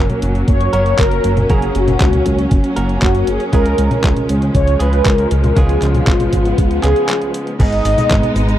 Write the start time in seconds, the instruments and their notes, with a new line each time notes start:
Already playing: string section F#3 A#3 C#4, clean electric guitar A#3 C#4 F#4 A#4, analog polysynth A#4
0.10 closed hi-hat, high conga
0.22 analog synth bass F#1, closed hi-hat
0.35 closed hi-hat
0.48 analog synth bass F#1, analog polysynth C#5, kick, closed hi-hat
0.61 closed hi-hat
0.73 analog synth bass F#1, clean electric guitar A#3 C#4 F#4 A#4, analog polysynth C#5, closed hi-hat
0.86 closed hi-hat
0.99 analog synth bass F#1, analog polysynth A#4, kick, clap, closed hi-hat
1.11 closed hi-hat
1.24 analog synth bass F#1, closed hi-hat
1.37 closed hi-hat, high conga
1.49 analog synth bass F#1, clean electric guitar A#3 C#4 F#4 A#4, analog polysynth G#4, kick, closed hi-hat
1.62 closed hi-hat
1.75 analog synth bass F#1, analog polysynth F#4, closed hi-hat
1.88 closed hi-hat, high conga
2.00 analog synth bass C#2, kick, clap, closed hi-hat
2.13 closed hi-hat, high conga
2.26 analog synth bass C#2, kick, closed hi-hat
2.38 closed hi-hat
2.51 analog synth bass F#1, kick, closed hi-hat
2.64 closed hi-hat
2.76 analog synth bass F#1, clean electric guitar A#3 C#4 F#4 A#4, closed hi-hat
2.89 closed hi-hat
3.02 analog synth bass F#1, analog polysynth F#4, kick, clap, closed hi-hat
3.15 closed hi-hat
3.27 analog synth bass F#1, analog polysynth G#4, closed hi-hat
3.40 closed hi-hat
3.52 analog synth bass C#2, clean electric guitar C#3 G#3 C#4 F4 G#4, string section F3 G#3, analog polysynth A#4, kick, closed hi-hat
3.66 closed hi-hat
3.78 analog synth bass C#2, closed hi-hat
3.91 closed hi-hat, high conga
4.04 analog synth bass C#2, kick, clap, closed hi-hat
4.17 closed hi-hat, high conga
4.29 analog synth bass C#2, closed hi-hat
4.42 closed hi-hat
4.55 analog synth bass C#2, analog polysynth C#5, kick, closed hi-hat
4.67 closed hi-hat
4.79 analog synth bass C#2, clean electric guitar C#3 G#3 C#4 F4 G#4, analog polysynth B4, closed hi-hat
4.93 closed hi-hat
5.05 analog synth bass C#2, analog polysynth A#4, kick, clap, closed hi-hat
5.18 closed hi-hat
5.31 analog synth bass C#2, closed hi-hat
5.44 closed hi-hat, high conga
5.56 analog synth bass C#2, clean electric guitar C#3 G#3 C#4 F4 G#4, string section B3, analog polysynth G#4, kick, closed hi-hat
5.69 closed hi-hat
5.82 analog synth bass C#2, analog polysynth F4, clap, closed hi-hat
5.95 closed hi-hat, high conga
6.07 analog synth bass G#1, kick, clap, closed hi-hat
6.20 closed hi-hat, high conga
6.33 analog synth bass G#1, kick, closed hi-hat
6.45 closed hi-hat
6.58 analog synth bass C#2, kick, closed hi-hat
6.71 closed hi-hat
6.83 analog synth bass C#2, clean electric guitar C#3 G#3 C#4 F4 G#4, analog polysynth G#4, clap, closed hi-hat
6.96 closed hi-hat
7.09 clap, closed hi-hat
7.22 closed hi-hat
7.34 closed hi-hat
7.47 closed hi-hat
7.59 analog synth bass G#1, clean electric guitar G#2 G#3 B3 D#4 G#4, string section G#3 B3 D#4, analog polysynth D#5, kick, closed hi-hat, crash, cabasa
7.73 closed hi-hat
7.85 analog synth bass G#1, open hi-hat, cabasa
7.98 closed hi-hat, high conga, cabasa
8.11 analog synth bass G#1, kick, clap, closed hi-hat, cabasa
8.23 closed hi-hat, high conga
8.36 analog synth bass G#1, open hi-hat, cabasa
8.49 closed hi-hat, cabasa